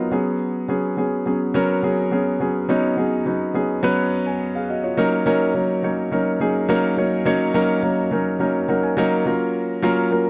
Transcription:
Already playing: F#3 B3 D#4 F4 G#4 A#4
0.11 F#3 B3 C#4 G#4
0.68 F#3 B3 C#4 G#4
0.97 F#3 B3 C#4 G#4
1.26 F#3 B3 C#4 G#4
1.54 F#3 B3 C#4 A#4
1.83 F#3 B3 C#4 G#4
2.11 F#3 B3 C#4 G#4
2.40 F#3 B3 C#4 G#4
2.69 F#3 B3 C#4 D#4
2.97 F#3 B3 C#4 G#4
3.26 F#3 B3 C#4 D#4
3.54 F#3 B3 C#4 G#4
3.83 F#3 B3 C#4 B4
4.27 B4 G#5
4.55 G#4 F5
4.70 F#4 D#5
4.84 F4 C#5
4.97 F#3 A#3 C#4 D#4 A#4
5.26 F#3 A#3 C#4 D#4 A#4
5.54 F#3 A#3 C#4 D#4 A#4
5.83 F#3 A#3 C#4 D#4 C#5
6.11 F#3 A#3 C#4 D#4 A#4
6.40 F#3 A#3 C#4 D#4 G#4
6.69 F#3 A#3 C#4 D#4 A#4
6.97 F#3 A#3 C#4 D#4 C#5
7.25 F#3 A#3 C#4 D#4 C#5
7.54 F#3 A#3 C#4 D#4 A#4
7.83 F#3 A#3 C#4 D#4 A#4
8.11 F#3 A#3 C#4 D#4 A#4
8.39 F#3 A#3 C#4 D#4 A#4
8.68 F#3 A#3 C#4 D#4 A#4 F#5
8.83 G#5
8.97 F#3 A#3 C#4 D#4 A#4 A#5
9.26 F#3 A#3 C#4 F4 A#4
9.82 F#3 A#3 C#4 F4 A#4
10.11 F#3 A#3 C#4 F4 A#4

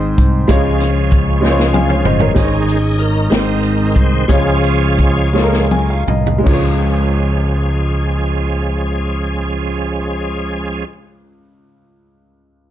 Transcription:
Already playing: G#1 G#2 G#3 C4 D#4 C5
0.18 C2, kick, closed hi-hat
0.48 C#2 C#3 F3 G#3 C#4 F4 C#5, kick, closed hi-hat
0.80 snare, closed hi-hat
1.11 kick, closed hi-hat
1.41 G#3 C#4 F4 C5, snare
1.51 C#5
1.59 snare
1.73 F5 G#5, high tom
1.89 C#5 F5, mid tom
2.05 G1 C5 D#5, mid tom
2.20 A#4 C#5, floor tom
2.34 G#1 G#2 D#3 G#3 C#4 D#4 G#4, kick, closed hi-hat
2.38 C5
2.45 C#5
2.68 closed hi-hat
2.98 D#4 A#4, closed hi-hat
3.30 G#1 G#2 D#3 G#3 C4 D#4, snare, closed hi-hat
3.34 C5
3.63 closed hi-hat
3.95 C2 C5, kick, closed hi-hat
4.28 C#2 C#3 F3 G#3 C#4 F4 G#4 C#5, kick, closed hi-hat
4.32 C#5
4.64 closed hi-hat
4.98 kick, closed hi-hat
5.33 F3 G#3 C#4 F4 A4, snare
5.44 A#4
5.53 snare
5.71 G#5, high tom
5.90 F5
6.08 C2 D#5, mid tom
6.26 floor tom
6.38 G#3
6.43 C#2 C#4, kick, crash
6.48 F3 G#3 C#4 F4 G#4
6.54 C#5

